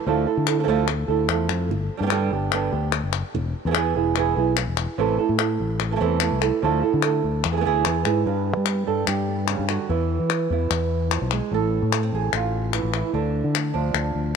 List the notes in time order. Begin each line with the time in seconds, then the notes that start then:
0.07 D2 D3 F3 A3 E4 A4
0.26 A3 E4 A4
0.37 D3
0.47 A3 E4 A4, clap
0.59 F3 A3 E4 A4
0.63 D2 F3 A3 E4 A4
0.68 D3 F3 A3 E4 A4
0.88 muted nylon-string guitar stroke, clap
1.08 D2 A3 E4 A4
1.28 E2 F3 A3 E4 A4, clap
1.49 F2, clap
1.69 G1, muted nylon-string guitar stroke
1.97 G2 G3 B3 D4 G4
2.02 G3 B3 D4 G4
2.06 G3 B3 D4 G4, clap
2.11 D3 G3 B3 D4 G4
2.31 G1 B3 D4 G4
2.52 D3 G3 B3 D4 G4, clap
2.72 D2 B3 D4 G4
2.92 muted nylon-string guitar stroke, clap
3.03 F#1
3.13 clap
3.34 E1, muted nylon-string guitar stroke
3.65 E2 E3 B3 E4 G#4
3.71 E3 B3 E4 G#4, clap
3.76 B3 E4 G#4
3.96 E1 B3 E4 G#4
4.16 E3 B3 E4 G#4, clap
4.36 B1 B3 E4 G#4
4.57 muted nylon-string guitar stroke, clap
4.67 E1
4.77 clap
4.98 A1 C3 E3 A3 E4 A4
5.19 A3 E4 A4
5.29 A2
5.38 A3 E4 A4, clap
5.60 A1
5.80 muted nylon-string guitar stroke, clap
5.91 E3 A3 E4 A4
5.96 E3 A3 E4 A4
6.00 E2 C3 E3 A3 E4 A4
6.20 E3 A3 E4 A4, clap
6.32 C2
6.41 A3 E4 A4, clap
6.62 D2 D3 F3 A3 E4 A4
6.82 A3 E4 A4
6.94 D3
7.02 A3 E4 A4, clap
7.24 D2
7.44 E2, muted nylon-string guitar stroke, clap
7.52 E3 B3 E4 G#4
7.56 E3 B3 E4 G#4
7.61 E3 B3 E4 G#4
7.65 D2 E3 B3 E4 G#4
7.85 E2 E3 B3 E4 G#4, clap
8.05 G#2 B3 E4 G#4, clap
8.26 G2 B4
8.57 G3
8.66 B3, clap
8.87 G2 G3 A4
9.07 G2 G4, clap
9.29 B3
9.48 C#3, clap
9.59 G2
9.69 D3 F#4, clap
9.89 E2 E3 B3 E4
10.19 E3
10.30 clap
10.50 E2 B3 E4
10.70 E2, clap
11.11 F3, clap
11.21 B1
11.31 G#3, clap
11.51 A1 A2 A4
11.82 A2
11.92 A3, clap
12.03 C4
12.13 A1 G#4
12.33 A1 F4, clap
12.73 E3, clap
12.83 A1
12.94 E4, clap
13.13 D2 D3 D4
13.44 D3
13.55 A3, clap
13.74 D2 F3 D4
13.94 D2, clap
14.15 D2